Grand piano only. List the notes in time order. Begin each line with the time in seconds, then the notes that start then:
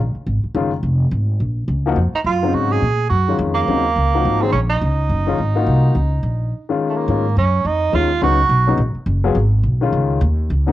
0.55 D#3 G#3 C#4 F4
1.86 F3 A#3 D#4 F#4
2.43 C#3 F#3 C4 D#4
3.28 D#3 G#3 C#4 F4
3.68 C#3 F#3 C4 D#4
4.14 F3 A#3 D#4 F#4
4.42 D#3 G#3 C#4 G#4
5.27 D#3 G#3 C#4 F4
5.55 A#3 D#4 F4 F#4
6.69 D#3 G#3 C#4 F4
7.09 D#3 G#3 C#4 F4
7.93 D#3 G#3 C#4 F4
8.22 C#3 F#3 B3 D#4
8.67 C#3 F#3 B3 D#4
9.24 F#3 B3 F4 G#4
9.81 D#3 G#3 C#4 F4
10.66 C#3 F#3 B3 D#4